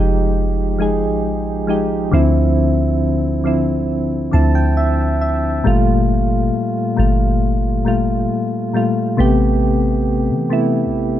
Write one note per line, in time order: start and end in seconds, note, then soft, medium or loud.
0.00 1.05 F1 loud
0.00 0.79 F3 medium
0.00 0.80 G#3 medium
0.00 0.81 D#4 medium
0.00 1.70 G4 loud
0.79 1.35 F3 medium
0.79 1.35 G#3 medium
0.79 1.36 D#4 medium
0.79 1.37 G#4 medium
1.03 2.09 G#1 medium
1.67 1.96 F3 medium
1.67 1.96 G#3 medium
1.67 1.97 D#4 medium
1.67 1.97 G4 medium
2.11 4.30 D2 loud
2.11 2.95 D3 loud
2.11 2.96 F3 medium
2.11 2.96 C4 loud
2.11 2.97 E4 loud
3.44 4.00 D3 medium
3.44 4.00 F3 medium
3.44 4.01 C4 medium
3.44 4.01 E4 medium
4.31 5.62 D2 medium
4.31 5.15 D3 medium
4.31 5.16 F3 medium
4.31 5.16 C4 medium
4.31 5.17 E4 medium
4.31 4.54 A5 medium
4.55 4.76 G5 medium
4.77 5.18 E5 medium
5.21 5.63 E5 medium
5.64 6.51 G1 loud
5.64 6.48 A#2 loud
5.64 6.48 G3 medium
5.64 6.49 A3 medium
5.64 6.49 F4 loud
6.97 8.27 G1 loud
6.97 7.53 A#2 medium
6.97 7.53 G3 medium
6.97 7.54 A3 medium
6.97 7.54 F4 medium
7.85 8.41 A#2 medium
7.85 8.42 G3 medium
7.85 8.42 A3 medium
7.85 8.42 F4 medium
8.73 9.02 A#2 medium
8.73 9.02 G3 medium
8.73 9.03 A3 medium
8.73 9.03 F4 medium
9.17 10.32 A1 loud
9.17 10.01 C3 loud
9.17 10.01 A3 medium
9.17 10.02 B3 loud
9.17 10.02 G4 loud
10.30 10.87 E3 loud
10.50 11.06 C3 medium
10.50 11.06 A3 medium
10.50 11.07 B3 medium
10.50 11.07 E4 medium
10.85 11.20 A1 loud